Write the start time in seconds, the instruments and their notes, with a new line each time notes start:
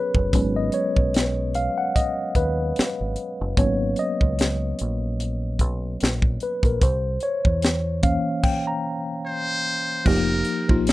Already playing: tine electric piano F#3 B3 C#4 G#4 A#4 B4 C#5
0.15 fingered electric bass F#1, kick
0.33 fingered electric bass G#1, tine electric piano F#3 G#3 B3 C#4, kick, closed hi-hat
0.56 tine electric piano D#5
0.72 tine electric piano C#5, closed hi-hat
0.97 fingered electric bass B1, kick
1.14 snare, closed hi-hat
1.54 tine electric piano F5, closed hi-hat
1.78 tine electric piano F#5
1.96 tine electric piano D#5, kick, closed hi-hat
2.35 fingered electric bass D#2, tine electric piano B4, kick, closed hi-hat
2.76 muted fingered electric bass stroke, snare, closed hi-hat
3.01 fingered electric bass G#1
3.16 closed hi-hat
3.41 fingered electric bass F#1
3.57 fingered electric bass G#1, tine electric piano F#3 A#3 B3 C#4 C#5, kick, closed hi-hat
3.96 tine electric piano D#5, closed hi-hat
4.21 fingered electric bass C#2, kick
4.39 snare, closed hi-hat
4.79 fingered electric bass A#1, closed hi-hat
5.20 closed hi-hat
5.59 fingered electric bass B1, kick, closed hi-hat
6.01 fingered electric bass A#1, snare, closed hi-hat
6.22 kick
6.40 tine electric piano B4, closed hi-hat
6.63 fingered electric bass A#1, tine electric piano A#4, kick, closed hi-hat
6.82 fingered electric bass C2, tine electric piano C5, kick, closed hi-hat
7.20 tine electric piano C#5, closed hi-hat
7.45 fingered electric bass E2, kick
7.62 snare, closed hi-hat
8.02 tine electric piano E3 A#3 C#4 F5, kick, closed hi-hat
8.43 tine electric piano G5, kick, crash
8.67 tine electric piano A#5
9.26 muted trumpet C5
10.05 fingered electric bass F1, tine electric piano F3 A#3 D#4 G4, muted trumpet A#4, kick, crash
10.45 closed hi-hat
10.68 fingered electric bass A#1, tine electric piano F3 A#3 D#4 F4, kick
10.87 snare, closed hi-hat